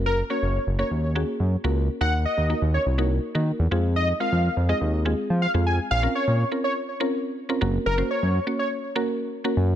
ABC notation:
X:1
M:4/4
L:1/16
Q:1/4=123
K:Bbm
V:1 name="Analog synth lead"
B2 d3 z d z8 z | g2 e3 z d z8 z | e2 f3 z e z4 z f z a z | f2 d3 z d z8 z |
B2 d3 z d z8 z |]
V:2 name="Synth pluck"
[B,DGB] z [B,DGB]3 z [B,DGB]2 z [B,DGA]3 z [B,DGB]2 z | [B,EGB]3 z [B,EGB]3 z [B,EGB]2 z [B,EGB]3 [A,CFA]2- | [A,CFA] z [A,CFB]3 z [A,CFA]2 z [A,CFA]3 z [A,CFA]2 z | z [CDFB]3 z [CDFB]3 z [CDFB]3 z [CDFB] [B,DGB]2 |
z [B,DGc]3 z [B,DGd]3 z [B,DGB]3 z [B,DGB]3 |]
V:3 name="Analog synth bass" clef=bass
G,,,3 G,,,2 G,,,2 E,,4 G,,2 D,,3 | E,,3 E,,2 E,,2 C,,4 E,2 =E,, F,,2- | F,,3 F,,2 F,,2 E,,4 F,2 F,,3 | B,,,2 z B,,2 z8 z G,,,2 |
G,,,2 z G,,2 z8 z G,,2 |]